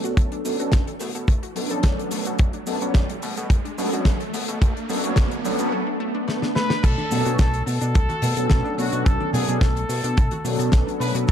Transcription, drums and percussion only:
0.04 closed hi-hat medium
0.04 cabasa medium
0.17 kick loud
0.17 closed hi-hat loud
0.17 cabasa soft
0.32 closed hi-hat medium
0.45 open hi-hat loud
0.45 cabasa medium
0.60 closed hi-hat medium
0.60 cabasa medium
0.72 kick loud
0.72 snare loud
0.72 closed hi-hat medium
0.72 cabasa soft
0.87 closed hi-hat medium
0.99 open hi-hat loud
0.99 cabasa medium
1.15 closed hi-hat medium
1.15 cabasa medium
1.28 kick loud
1.28 closed hi-hat medium
1.28 cabasa soft
1.43 closed hi-hat medium
1.56 open hi-hat loud
1.56 cabasa medium
1.70 closed hi-hat soft
1.70 cabasa medium
1.83 kick loud
1.83 snare loud
1.83 closed hi-hat loud
1.83 cabasa soft
1.99 closed hi-hat medium
2.11 open hi-hat loud
2.11 cabasa medium
2.25 closed hi-hat medium
2.25 cabasa medium
2.38 kick loud
2.38 closed hi-hat medium
2.38 cabasa medium
2.53 closed hi-hat soft
2.67 open hi-hat loud
2.67 cabasa medium
2.81 closed hi-hat medium
2.81 cabasa medium
2.94 kick loud
2.94 snare loud
2.94 closed hi-hat medium
2.94 cabasa soft
3.09 closed hi-hat medium
3.22 open hi-hat loud
3.22 cabasa medium
3.37 closed hi-hat medium
3.37 cabasa medium
3.50 kick loud
3.50 closed hi-hat loud
3.50 cabasa medium
3.65 closed hi-hat soft
3.78 open hi-hat loud
3.78 cabasa medium
3.93 closed hi-hat medium
3.93 cabasa medium
4.05 kick loud
4.05 snare loud
4.05 closed hi-hat loud
4.05 cabasa soft
4.20 closed hi-hat medium
4.33 open hi-hat loud
4.33 cabasa medium
4.48 closed hi-hat medium
4.48 cabasa medium
4.62 kick loud
4.62 closed hi-hat loud
4.62 cabasa medium
4.77 closed hi-hat soft
4.89 open hi-hat loud
4.89 cabasa medium
5.04 closed hi-hat medium
5.04 cabasa medium
5.16 kick loud
5.16 snare loud
5.16 closed hi-hat loud
5.16 cabasa medium
5.31 closed hi-hat medium
5.45 open hi-hat loud
5.45 cabasa medium
5.59 closed hi-hat medium
5.59 cabasa medium
6.28 snare medium
6.42 snare medium
6.56 snare medium
6.70 snare medium
6.83 kick loud
6.83 closed hi-hat medium
6.83 crash loud
6.83 cabasa medium
6.83 cabasa soft
6.98 high conga medium
6.98 cabasa soft
7.11 open hi-hat loud
7.11 low conga medium
7.11 cabasa loud
7.26 closed hi-hat medium
7.26 cabasa medium
7.39 kick loud
7.39 snare loud
7.39 closed hi-hat medium
7.39 cabasa soft
7.39 cabasa medium
7.54 closed hi-hat medium
7.54 cabasa soft
7.67 open hi-hat loud
7.67 cabasa medium
7.80 closed hi-hat medium
7.80 cabasa medium
7.95 kick loud
7.95 closed hi-hat medium
7.95 cabasa medium
8.09 closed hi-hat medium
8.09 high conga medium
8.09 cabasa soft
8.22 open hi-hat loud
8.22 low conga medium
8.22 cabasa medium
8.37 closed hi-hat medium
8.37 cabasa medium
8.50 kick loud
8.50 snare loud
8.50 closed hi-hat medium
8.50 cabasa medium
8.65 cabasa soft
8.78 open hi-hat medium
8.78 cabasa medium
8.92 closed hi-hat medium
8.92 cabasa medium
9.06 kick loud
9.06 closed hi-hat medium
9.06 cabasa medium
9.06 cabasa soft
9.20 high conga medium
9.20 cabasa soft
9.33 open hi-hat loud
9.33 low conga medium
9.33 cabasa medium
9.48 closed hi-hat medium
9.48 cabasa medium
9.61 kick loud
9.61 snare loud
9.61 closed hi-hat medium
9.61 cabasa medium
9.76 closed hi-hat medium
9.76 cabasa soft
9.89 open hi-hat loud
9.89 cabasa medium
10.04 closed hi-hat medium
10.04 cabasa medium
10.17 kick loud
10.17 closed hi-hat medium
10.17 cabasa medium
10.17 cabasa soft
10.31 closed hi-hat medium
10.31 high conga medium
10.31 cabasa soft
10.45 open hi-hat loud
10.45 cabasa medium
10.59 closed hi-hat medium
10.59 cabasa medium
10.72 kick loud
10.72 snare loud
10.72 closed hi-hat medium
10.72 cabasa medium
10.88 closed hi-hat medium
10.88 cabasa soft
11.01 open hi-hat loud
11.01 cabasa medium
11.14 closed hi-hat medium
11.14 cabasa medium
11.27 kick loud
11.27 closed hi-hat medium
11.27 cabasa medium

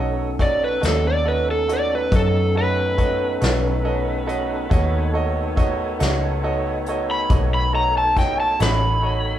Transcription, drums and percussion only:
0.39 kick medium
0.39 closed hi-hat medium
0.83 snare loud
0.83 closed hi-hat medium
1.69 closed hi-hat medium
2.12 kick loud
2.12 closed hi-hat medium
2.98 kick medium
2.98 closed hi-hat medium
3.41 snare loud
3.41 closed hi-hat medium
4.29 closed hi-hat medium
4.71 kick loud
4.71 closed hi-hat medium
5.57 kick medium
5.57 closed hi-hat medium
6.00 snare medium
6.00 closed hi-hat medium
6.86 closed hi-hat medium
7.30 kick loud
7.30 closed hi-hat medium
8.17 kick medium
8.17 snare soft
8.17 closed hi-hat medium
8.60 snare loud
8.60 closed hi-hat medium

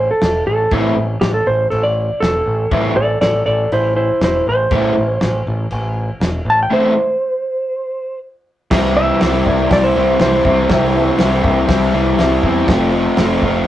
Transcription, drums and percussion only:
0.21 snare loud
0.21 crash medium
0.71 kick loud
0.71 crash medium
1.21 snare loud
1.21 crash medium
1.71 crash medium
2.22 snare loud
2.22 crash medium
2.71 kick loud
2.71 crash medium
3.21 snare loud
3.21 crash medium
3.72 crash medium
4.21 snare loud
4.21 crash medium
4.71 kick loud
4.71 crash medium
5.21 snare loud
5.21 crash medium
5.71 crash medium
6.21 snare loud
6.21 crash medium
8.71 kick loud
8.71 snare loud
8.71 crash loud
9.21 snare loud
9.21 open hi-hat medium
9.46 kick medium
9.71 kick loud
9.71 snare loud
9.71 open hi-hat medium
10.19 snare loud
10.19 open hi-hat medium
10.45 kick medium
10.69 kick loud
10.69 snare loud
10.69 open hi-hat medium
11.19 snare loud
11.19 open hi-hat medium
11.44 kick medium
11.68 kick loud
11.68 snare loud
11.68 open hi-hat medium
12.19 snare loud
12.19 open hi-hat medium
12.43 kick medium
12.68 kick loud
12.68 snare loud
12.68 open hi-hat medium
13.17 snare loud
13.17 open hi-hat medium
13.42 kick medium

